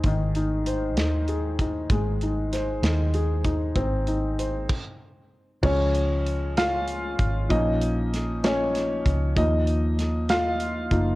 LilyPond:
<<
  \new Staff \with { instrumentName = "Felt piano" } { \time 6/8 \key des \major \tempo 4. = 65 << { r2. | r2. | r2. | des''4. <f' f''>4. |
<ees' ees''>4. des''4 r8 | ees''4. <f' f''>4. | } \\ { <ees ees' aes'>8 ees'8 c''8 ees'8 aes'8 ees'8 | aes8 ees'8 c''8 ees'8 aes'8 ees'8 | c'8 ees'8 c''8 r4. | <f aes des'>4. r4. |
<f bes des'>4. <f bes des'>8 r4 | <f bes ees'>2~ <f bes ees'>8 <f bes ees'>8 | } >> }
  \new Staff \with { instrumentName = "Fingered electric bass" } { \clef bass \time 6/8 \key des \major aes,,4. ees,4. | aes,,4. ees,4. | aes,,4. r4. | des,2~ des,8 aes,,8 |
bes,,2~ bes,,8 des,8 | ees,2~ ees,8 ges,,8 | }
  \new DrumStaff \with { instrumentName = "Drums" } \drummode { \time 6/8 <hh bd>8 hh8 hh8 <hh sn>8 hh8 <hh bd>8 | <hh bd>8 hh8 <hh sn>8 <hh sn>8 hh8 <hh bd>8 | <hh bd>8 hh8 hh8 <cymc bd>4. | <cymc bd>8 hh8 hh8 <hh sn>8 hh8 <hh bd>8 |
<hh bd>8 hh8 <hh sn>8 <hh sn>8 <hh sn>8 <hh bd>8 | <hh bd>8 hh8 <hh sn>8 <hh sn>8 hh8 <hh bd>8 | }
>>